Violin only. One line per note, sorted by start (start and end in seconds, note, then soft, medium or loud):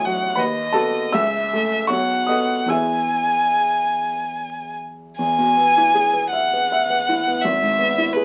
0.05 0.41 F#5 medium
0.39 1.16 D#5 medium
1.14 1.90 E5 medium
1.90 2.71 F#5 medium
2.69 4.76 G#5 medium
5.17 6.26 G#5 medium
6.30 7.43 F#5 medium
7.41 8.15 E5 medium
8.13 8.25 B4 medium